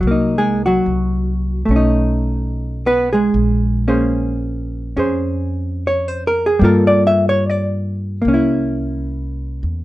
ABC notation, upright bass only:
X:1
M:4/4
L:1/8
Q:"Swing" 1/4=73
K:Bblyd
V:1 name="Upright bass" clef=bass
C,,2 C,,2 =B,,,4 | B,,,4 F,,4 | G,,4 C,,3 E,, |]